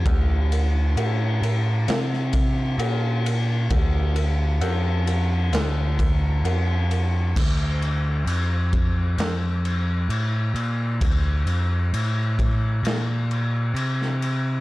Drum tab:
CC |----------------|----------------|x-x-x-x-x-x-x-x-|x-x-x-x-x-x-x-x-|
RD |x-x-x-x-x-x-x-x-|x-x-x-x-x-x-x-x-|----------------|----------------|
SD |--------oo------|--------o-------|--------o-------|--------o----o--|
BD |o---------o-----|o---------o-----|o-----o---------|o-----o---------|